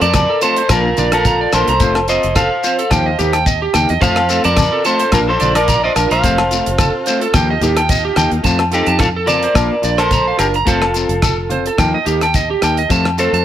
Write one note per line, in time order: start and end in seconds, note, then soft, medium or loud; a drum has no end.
0.01 0.25 F2 medium
0.01 0.40 A#4 medium
0.01 0.42 D5 medium
0.01 0.13 A5 medium
0.01 closed hi-hat soft
0.14 kick medium
0.14 cross-stick medium
0.14 closed hi-hat medium
0.14 high conga medium
0.14 low agogo medium
0.14 shekere medium
0.30 0.41 A4 medium
0.41 0.61 A3 soft
0.41 0.61 C4 soft
0.41 0.60 F4 medium
0.41 0.69 A4 medium
0.41 0.71 C5 medium
0.41 0.56 A5 medium
0.41 closed hi-hat soft
0.41 shekere medium
0.56 0.69 C5 medium
0.56 closed hi-hat medium
0.69 0.94 A#1 loud
0.69 0.87 F3 medium
0.69 0.88 A#3 medium
0.69 0.88 D4 medium
0.69 1.11 F4 medium
0.69 0.83 A#4 medium
0.69 1.13 A#4 loud
0.69 muted clean electric guitar stroke medium
0.69 kick medium
0.69 cross-stick medium
0.69 closed hi-hat medium
0.69 low agogo medium
0.69 shekere medium
0.97 1.45 A#1 medium
0.97 1.16 D4 soft
0.97 1.15 F4 medium
0.97 1.11 D5 medium
0.97 closed hi-hat soft
0.97 muted conga soft
0.97 high conga medium
0.97 shekere medium
1.12 1.50 F4 medium
1.12 1.51 A4 medium
1.12 1.24 A#4 medium
1.12 cross-stick medium
1.12 closed hi-hat soft
1.12 low agogo medium
1.25 1.39 A#5 medium
1.25 kick medium
1.25 closed hi-hat soft
1.25 high conga medium
1.25 shekere medium
1.41 1.52 D5 medium
1.53 1.66 A#1 medium
1.53 1.72 A#3 soft
1.53 1.72 D4 soft
1.53 1.71 F4 medium
1.53 2.06 A4 medium
1.53 1.67 A#4 medium
1.53 2.08 C5 medium
1.53 cross-stick medium
1.53 closed hi-hat soft
1.53 muted conga soft
1.53 low agogo medium
1.53 shekere medium
1.68 1.79 C2 medium
1.68 1.80 A#5 medium
1.68 closed hi-hat medium
1.80 2.17 F1 medium
1.80 1.98 A3 medium
1.80 1.99 C4 medium
1.80 1.99 F4 medium
1.80 1.94 C5 medium
1.80 kick medium
1.80 closed hi-hat soft
1.80 shekere medium
1.95 cross-stick medium
1.95 low agogo medium
2.08 2.27 C4 soft
2.08 2.26 F4 soft
2.08 2.35 C5 medium
2.08 2.36 D#5 medium
2.08 closed hi-hat soft
2.08 muted conga soft
2.08 shekere medium
2.23 2.47 F1 medium
2.23 closed hi-hat soft
2.36 2.49 A4 medium
2.36 3.43 C5 medium
2.36 3.43 F5 medium
2.36 kick medium
2.36 cross-stick medium
2.36 closed hi-hat soft
2.36 high conga medium
2.36 low agogo medium
2.36 shekere medium
2.64 2.82 C4 soft
2.64 2.81 F4 medium
2.64 2.77 C5 medium
2.64 closed hi-hat soft
2.64 shekere medium
2.79 2.90 A4 medium
2.79 closed hi-hat soft
2.91 3.15 D#2 loud
2.91 3.09 F3 medium
2.91 3.09 A#3 medium
2.91 3.10 D#4 medium
2.91 3.10 G4 medium
2.91 3.04 G5 medium
2.91 kick medium
2.91 cross-stick medium
2.91 closed hi-hat soft
2.91 high conga medium
2.91 low agogo medium
2.91 shekere medium
3.06 3.17 D#5 medium
3.19 3.67 D#2 medium
3.19 3.38 A#3 soft
3.19 3.37 D#4 medium
3.19 3.32 G4 medium
3.19 3.36 G4 medium
3.19 closed hi-hat soft
3.19 muted conga soft
3.19 low conga medium
3.19 shekere medium
3.33 3.45 G5 medium
3.33 cross-stick medium
3.33 closed hi-hat soft
3.33 low agogo medium
3.46 3.60 D#5 medium
3.46 kick medium
3.46 closed hi-hat soft
3.46 shekere medium
3.62 3.73 G4 medium
3.73 3.87 D#2 medium
3.73 3.92 A#3 medium
3.73 3.92 D#4 medium
3.73 3.91 G4 medium
3.73 3.88 G5 medium
3.73 cross-stick medium
3.73 closed hi-hat soft
3.73 muted conga soft
3.73 high conga medium
3.73 low agogo medium
3.73 shekere medium
3.89 4.00 E2 medium
3.89 4.01 D#5 medium
3.89 closed hi-hat soft
4.01 4.38 F2 medium
4.01 4.19 F3 medium
4.01 4.19 A3 medium
4.01 5.12 C4 medium
4.01 5.12 F4 medium
4.01 4.20 F4 medium
4.01 4.42 C5 medium
4.01 4.42 F5 loud
4.01 4.15 A5 medium
4.01 5.12 A5 medium
4.01 muted clean electric guitar stroke medium
4.01 kick medium
4.01 closed hi-hat soft
4.01 shekere loud
4.16 cross-stick medium
4.16 low agogo medium
4.29 4.48 A3 soft
4.29 4.47 C4 soft
4.29 4.47 F4 soft
4.29 4.43 A4 medium
4.29 closed hi-hat soft
4.29 muted conga soft
4.29 shekere medium
4.44 4.68 F2 medium
4.44 4.82 A#4 medium
4.44 4.82 D5 medium
4.44 4.56 A5 medium
4.44 closed hi-hat medium
4.57 kick medium
4.57 cross-stick medium
4.57 closed hi-hat soft
4.57 high conga medium
4.57 low agogo medium
4.57 shekere loud
4.73 4.83 A4 medium
4.85 5.03 A3 soft
4.85 5.03 C4 soft
4.85 5.02 F4 medium
4.85 5.11 A4 medium
4.85 5.14 C5 medium
4.85 4.98 A5 medium
4.85 closed hi-hat soft
4.85 shekere medium
4.99 5.11 C5 medium
4.99 closed hi-hat medium
5.12 5.36 A#1 loud
5.12 5.30 A#3 medium
5.12 5.30 D4 medium
5.12 6.23 D4 medium
5.12 5.19 F4 medium
5.12 7.32 F4 medium
5.12 5.31 F4 medium
5.12 5.25 A#4 medium
5.12 6.22 A#4 medium
5.12 5.19 A#4 medium
5.12 kick medium
5.12 cross-stick medium
5.12 closed hi-hat medium
5.12 low agogo medium
5.12 shekere loud
5.29 5.54 A4 medium
5.29 5.55 C5 medium
5.40 5.88 A#1 medium
5.40 5.59 D4 soft
5.40 5.58 F4 medium
5.40 5.53 D5 medium
5.40 closed hi-hat soft
5.40 muted conga soft
5.40 high conga medium
5.40 shekere medium
5.55 5.81 A#4 medium
5.55 5.67 A#4 medium
5.55 5.84 D5 medium
5.55 cross-stick medium
5.55 closed hi-hat soft
5.55 low agogo medium
5.68 5.81 A#5 medium
5.68 kick medium
5.68 closed hi-hat medium
5.68 high conga medium
5.68 shekere medium
5.84 5.92 C5 medium
5.84 5.94 D5 medium
5.84 5.91 D#5 medium
5.96 6.09 A#1 medium
5.96 6.15 D4 soft
5.96 6.13 F4 medium
5.96 6.09 A#4 medium
5.96 cross-stick medium
5.96 closed hi-hat medium
5.96 low agogo medium
5.96 shekere medium
6.11 6.21 A#1 medium
6.11 7.18 C5 medium
6.11 7.18 F5 medium
6.11 6.22 A#5 medium
6.11 closed hi-hat soft
6.24 6.60 F1 medium
6.24 6.41 F3 medium
6.24 6.41 A3 medium
6.24 6.41 C4 medium
6.24 7.34 C4 medium
6.24 6.42 F4 medium
6.24 7.34 A4 medium
6.24 6.37 C5 medium
6.24 kick medium
6.24 closed hi-hat medium
6.24 shekere medium
6.38 cross-stick medium
6.38 low agogo medium
6.51 6.70 A3 soft
6.51 6.69 C4 soft
6.51 6.69 F4 soft
6.51 closed hi-hat medium
6.51 muted conga soft
6.51 shekere medium
6.66 6.90 F1 medium
6.66 closed hi-hat medium
6.78 6.92 A4 medium
6.78 kick medium
6.78 cross-stick medium
6.78 closed hi-hat medium
6.78 high conga medium
6.78 low agogo medium
6.78 shekere medium
7.06 7.26 A3 soft
7.06 7.25 C4 medium
7.06 7.24 F4 medium
7.06 7.20 C5 medium
7.06 closed hi-hat soft
7.06 shekere medium
7.21 7.33 A4 medium
7.21 closed hi-hat medium
7.34 7.58 D#2 loud
7.34 7.52 F3 medium
7.34 7.52 A#3 medium
7.34 8.44 D#4 medium
7.34 8.45 F4 medium
7.34 8.44 G4 medium
7.34 7.53 G4 medium
7.34 7.47 G5 medium
7.34 muted clean electric guitar stroke medium
7.34 kick medium
7.34 cross-stick medium
7.34 closed hi-hat soft
7.34 high conga medium
7.34 low agogo medium
7.34 shekere medium
7.50 7.61 D#5 medium
7.61 8.09 D#2 medium
7.61 7.80 A#3 medium
7.61 7.80 D#4 medium
7.61 7.79 G4 medium
7.61 7.75 G4 medium
7.61 closed hi-hat medium
7.61 muted conga soft
7.61 low conga medium
7.61 shekere medium
7.77 7.88 G5 medium
7.77 cross-stick medium
7.77 closed hi-hat soft
7.77 low agogo medium
7.89 8.03 D#5 medium
7.89 kick medium
7.89 closed hi-hat soft
7.89 shekere loud
8.05 8.16 G4 medium
8.16 8.30 D#2 medium
8.16 8.36 A#3 soft
8.16 8.35 D#4 medium
8.16 8.34 G4 medium
8.16 8.30 G5 medium
8.16 cross-stick medium
8.16 closed hi-hat soft
8.16 muted conga soft
8.16 high conga medium
8.16 low agogo medium
8.16 shekere medium
8.31 8.43 D#2 medium
8.31 closed hi-hat soft
8.43 8.81 F2 medium
8.43 8.62 A3 medium
8.43 8.62 C4 medium
8.43 8.63 F4 medium
8.43 8.58 A5 medium
8.43 kick medium
8.43 closed hi-hat soft
8.43 muted conga soft
8.43 shekere medium
8.59 cross-stick medium
8.59 low agogo medium
8.71 8.91 C4 soft
8.71 9.00 D#4 medium
8.71 8.90 F4 soft
8.71 8.99 G4 medium
8.71 8.86 A4 medium
8.71 closed hi-hat soft
8.71 muted conga soft
8.71 shekere medium
8.86 9.46 F2 medium
8.86 8.99 A5 medium
8.86 closed hi-hat soft
8.99 9.08 F4 medium
8.99 9.07 A4 medium
8.99 kick medium
8.99 cross-stick medium
8.99 closed hi-hat soft
8.99 high conga medium
8.99 low agogo soft
8.99 shekere medium
9.16 9.27 A4 medium
9.26 9.46 C4 soft
9.26 9.45 F4 soft
9.26 9.95 A#4 medium
9.26 9.95 D5 medium
9.26 9.42 A5 medium
9.26 closed hi-hat soft
9.26 high conga medium
9.26 shekere medium
9.43 9.55 C5 medium
9.43 closed hi-hat soft
9.54 9.69 A#1 medium
9.54 9.73 A#3 medium
9.54 9.73 D4 medium
9.54 9.74 F4 medium
9.54 9.70 A#4 medium
9.54 kick medium
9.54 cross-stick medium
9.54 closed hi-hat soft
9.54 low agogo medium
9.54 shekere medium
9.82 10.31 A#1 medium
9.82 10.02 D4 soft
9.82 10.01 F4 soft
9.82 9.97 D5 medium
9.82 closed hi-hat soft
9.82 shekere medium
9.98 10.37 A4 medium
9.98 10.10 A#4 medium
9.98 10.36 C5 medium
9.98 cross-stick medium
9.98 closed hi-hat soft
9.98 low agogo medium
10.11 10.26 A#5 medium
10.11 kick medium
10.11 closed hi-hat soft
10.11 high conga medium
10.11 shekere medium
10.28 10.38 F5 medium
10.37 10.63 F#1 medium
10.37 10.58 D4 soft
10.37 10.56 F4 medium
10.37 10.46 G4 medium
10.37 10.46 A#4 medium
10.37 10.53 A#4 medium
10.37 cross-stick medium
10.37 closed hi-hat soft
10.37 muted conga soft
10.37 low agogo medium
10.37 shekere medium
10.54 10.66 A#5 medium
10.54 closed hi-hat soft
10.65 11.04 F1 medium
10.65 10.84 A3 medium
10.65 10.85 C4 medium
10.65 10.85 F4 medium
10.65 11.75 F4 medium
10.65 11.75 A4 medium
10.65 10.81 C5 medium
10.65 kick medium
10.65 closed hi-hat medium
10.65 shekere medium
10.82 cross-stick medium
10.82 low agogo medium
10.94 11.14 C4 soft
10.94 11.12 F4 soft
10.94 closed hi-hat soft
10.94 muted conga soft
10.94 shekere medium
11.09 11.68 F1 medium
11.09 closed hi-hat soft
11.22 11.37 A4 medium
11.22 kick medium
11.22 cross-stick medium
11.22 closed hi-hat soft
11.22 high conga medium
11.22 low agogo medium
11.22 shekere medium
11.50 11.69 C4 soft
11.50 11.68 F4 medium
11.50 11.64 C5 medium
11.50 closed hi-hat soft
11.50 high conga medium
11.66 11.78 A4 medium
11.66 closed hi-hat soft
11.78 11.92 D#2 medium
11.78 11.96 F3 medium
11.78 11.96 A#3 medium
11.78 11.97 D#4 medium
11.78 11.92 G5 medium
11.78 muted clean electric guitar stroke medium
11.78 kick medium
11.78 cross-stick medium
11.78 closed hi-hat soft
11.78 low agogo medium
11.78 shekere medium
11.94 12.05 D#5 medium
12.06 12.54 D#2 medium
12.06 12.25 A#3 soft
12.06 12.24 D#4 medium
12.06 12.24 G4 medium
12.06 12.20 G4 medium
12.06 closed hi-hat soft
12.06 shekere medium
12.21 12.34 G5 medium
12.21 cross-stick medium
12.21 closed hi-hat soft
12.21 low agogo medium
12.34 12.48 D#5 medium
12.34 kick medium
12.34 closed hi-hat soft
12.34 high conga medium
12.34 shekere medium
12.50 12.61 G4 medium
12.61 12.86 D#2 medium
12.61 12.81 A#3 soft
12.61 12.81 D#4 medium
12.61 12.80 G4 medium
12.61 12.76 G5 medium
12.61 cross-stick medium
12.61 closed hi-hat soft
12.61 low agogo medium
12.61 shekere medium
12.77 12.89 D#5 medium
12.77 closed hi-hat soft
12.89 13.27 F2 medium
12.89 13.08 F3 medium
12.89 13.08 A3 medium
12.89 13.08 C4 medium
12.89 13.09 F4 medium
12.89 13.04 A5 medium
12.89 kick medium
12.89 closed hi-hat soft
12.89 shekere medium
13.05 cross-stick medium
13.05 low agogo medium
13.18 13.37 A3 soft
13.18 13.37 C4 soft
13.18 13.36 F4 soft
13.18 13.32 A4 medium
13.18 13.45 A4 medium
13.18 13.45 C5 medium
13.18 closed hi-hat soft
13.18 muted conga soft
13.18 shekere medium
13.32 13.45 F2 medium
13.32 13.45 A5 medium
13.32 closed hi-hat soft